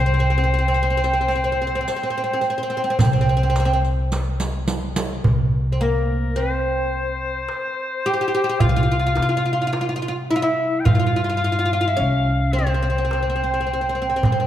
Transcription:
Already playing: upright bass C2, clarinet C5
0.06 oud C4
0.14 oud C4
0.19 oud C4, riq, darbuka ka
0.30 oud C4
0.38 oud C4
0.44 oud C4
0.54 oud C4
0.59 oud C4
0.68 oud C4
0.74 oud C4, riq
0.83 oud C4
0.90 oud C4
0.97 oud C4
1.03 oud C4, riq, darbuka ka
1.13 oud C4
1.21 oud C4
1.28 oud C4, riq, darbuka ka
1.35 oud C4
1.44 oud C4
1.52 oud C4
1.62 oud C4
1.67 oud C4
1.75 oud C4
1.81 oud C4
1.88 oud C4, riq
1.96 oud C4
2.03 oud C4
2.10 oud C4
2.18 oud C4
2.24 oud C4
2.33 oud C4
2.41 oud C4, riq, darbuka ka
2.50 oud C4
2.58 oud C4
2.63 oud C4
2.70 oud C4
2.77 oud C4
2.84 oud C4
2.90 oud C4
2.99 upright bass C2, oud C4, riq, darbuka dum
3.05 oud C4
3.13 oud C4
3.21 oud C4
3.29 oud C4
3.37 oud C4
3.43 oud C4
3.50 oud C4
3.56 oud C4, riq, darbuka tek
3.65 oud C4
3.73 oud C4
3.85 riq, darbuka ka
4.12 riq, darbuka tek
4.40 riq
4.68 riq
4.96 riq
5.24 upright bass C2, darbuka dum
5.72 oud C4
5.81 oud A#3, clarinet A#4
6.36 oud C4, clarinet C5
6.94 darbuka ka
7.49 darbuka tek
8.05 oud G4, darbuka ka
8.14 oud G4
8.21 oud G4
8.28 oud G4
8.35 oud G4
8.44 oud G4
8.49 oud G4
8.60 upright bass C2, oud F4, clarinet F5, darbuka dum
8.69 oud F4
8.76 oud F4
8.83 oud F4
8.92 oud F4
8.99 oud F4
9.07 oud F4
9.15 upright bass C3, oud F4, darbuka tek
9.22 oud F4
9.29 oud F4
9.37 oud F4
9.45 oud F4
9.53 oud F4
9.62 oud F4
9.67 oud F4
9.73 oud F4, darbuka tek
9.81 oud F4
9.89 oud F4
9.96 oud F4
10.02 oud F4
10.08 oud F4
10.31 oud E4, clarinet E5
10.36 oud F4
10.42 oud E4, clarinet E5
10.80 clarinet G5
10.85 upright bass G2, oud F4, clarinet F5, darbuka dum
10.95 oud F4
10.99 oud F4
11.07 oud F4
11.16 oud F4
11.24 oud F4
11.29 oud F4
11.37 oud F4
11.44 oud F4
11.52 oud F4
11.59 oud F4
11.65 oud F4
11.73 oud F4
11.81 oud F4
11.88 oud E4
11.97 upright bass C2, oud C#4
12.52 oud C4, clarinet C5
12.59 oud C4
12.67 oud C4
12.74 oud C4
12.82 oud C4
12.90 oud C4
12.98 oud C4
13.05 oud C4
13.11 oud C4, darbuka tek
13.23 oud C4
13.30 oud C4
13.36 oud C4
13.44 oud C4
13.54 oud C4
13.61 oud C4
13.67 oud C4, darbuka ka
13.73 oud C4
13.81 oud C4
13.89 oud C4
13.95 oud C4
14.02 oud C4
14.10 oud C4
14.16 oud C4
14.23 upright bass G2, oud C4, darbuka dum
14.32 oud C4
14.40 oud C4

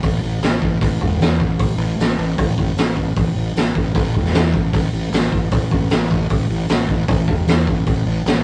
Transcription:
0.03 fingered electric bass A1, kick, open hi-hat
0.23 fingered electric bass A1
0.42 fingered electric bass A1, snare, open hi-hat
0.62 fingered electric bass A1, kick
0.81 fingered electric bass A1, kick, open hi-hat
1.01 fingered electric bass E1, kick
1.20 fingered electric bass E2, snare, open hi-hat
1.40 fingered electric bass A1, kick
1.60 fingered electric bass A1, kick, open hi-hat
1.78 fingered electric bass A1
1.99 fingered electric bass A1, snare, open hi-hat
2.18 fingered electric bass A1
2.38 fingered electric bass A1, kick, open hi-hat
2.58 fingered electric bass A1, kick
2.76 fingered electric bass A1, snare, open hi-hat
2.97 kick
3.17 fingered electric bass A1, kick, open hi-hat
3.36 fingered electric bass A1
3.55 fingered electric bass A1, snare, open hi-hat
3.75 fingered electric bass A1, kick
3.95 fingered electric bass A1, kick, open hi-hat
4.14 fingered electric bass E1, kick
4.25 snare
4.34 fingered electric bass E2, snare, open hi-hat
4.54 fingered electric bass A1, kick
4.73 fingered electric bass A1, kick, open hi-hat
4.93 fingered electric bass A1
5.12 fingered electric bass A1, snare, open hi-hat
5.32 fingered electric bass A1, kick
5.51 fingered electric bass A1, kick, open hi-hat
5.71 fingered electric bass A1, kick
5.90 fingered electric bass A1, snare, open hi-hat
6.11 kick
6.30 fingered electric bass A1, kick, open hi-hat
6.50 fingered electric bass A1
6.69 fingered electric bass A1, snare, open hi-hat
6.89 fingered electric bass A1, kick
7.08 fingered electric bass A1, kick, open hi-hat
7.28 fingered electric bass E1, kick
7.47 fingered electric bass E2, snare, open hi-hat
7.67 fingered electric bass A1, kick
7.86 fingered electric bass A1, kick, open hi-hat
8.06 fingered electric bass A1
8.26 fingered electric bass A1, snare, open hi-hat

